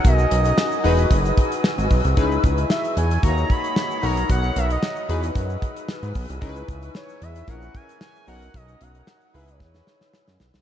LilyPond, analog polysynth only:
\new Staff \with { instrumentName = "Analog polysynth" } { \time 4/4 \key cis \dorian \tempo 4 = 113 <cis' dis' fis' ais'>4. <dis' fis' gis' b'>2~ <dis' fis' gis' b'>8 | <dis' e' gis' b'>2 <ais dis' fis' cis''>4. <dis' fis' ais' cis''>8~ | <dis' fis' ais' cis''>4. <dis' fis' gis' b'>2~ <dis' fis' gis' b'>8 | <dis' e' gis' ais' b'>2 <cis' e' gis' ais'>4. <cis' dis' fis' ais'>8~ |
<cis' dis' fis' ais'>4. <dis' e' gis' b'>2~ <dis' e' gis' b'>8 | }